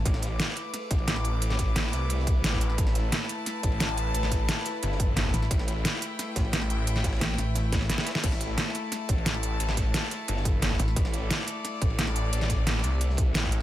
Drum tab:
CC |--------------------------------|--------------------------------|--------------------------------|--------------------------------|
RD |x---x---x---x---x---x-x-x---x---|x---x---x---x---x---x---x---x---|x---x---x---x---x---x-x-x---x---|x---x---x---x---x---x---x---x---|
HH |x---x---x---x---x---x---x---x---|x---x---x---x---x---x---x---x---|x---x---x---x---x---x---x---x---|x---x---x---x---x---x---x---x---|
SD |--o-o---o-o-----o-------o-o-----|--o-----o-o-o-----o-----o-o---o-|--o-o---o-o-----o-------o-o-----|--o-----o-o-o-----o-----o---o-o-|
BD |o-------------------o-----------|----o---------------o-----o-----|o-------------------o-----------|----o---------------o-----o-----|

CC |--------------------------------|--------------------------------|x-------------------------------|--------------------------------|
RD |x---x---x---x---x---x-x-x-------|x---x-xxx---x---x---x-x---x-xxx-|x---x---x---x---x---x-x-x---x---|x---x---x---x---x---x---x---x---|
HH |x---x---x---x---x---x---x---x---|x---x---x---x---x---x---x---x---|x---x---x---x---x---x---x---x---|x---x---x---x---x---x---x---x---|
SD |--o-o---o-o-----o---o---o-o-----|--o-o-ooo-o-o---o---o-o-o-o-ooo-|--o-o---o-o-----o-------o-o-----|--o-----o---o-----o-----o---o-o-|
BD |o-------------------o-----------|----o---------------o-----------|o-------------------o-----------|----o---------------o-----o-----|

CC |--------------------------------|--------------------------------|
RD |x---x---x---x---x---x-x-x---x---|x---x---x---x---x---x---x---x---|
HH |x---x---x---x---x---x---x---x---|x---x---x---x---x---x---x---x---|
SD |--o-o---o-o-----o-------o-o-----|--o-----o-o-o-----o-----o-o-----|
BD |o-------------------o-----------|----o---------------o-----o-----|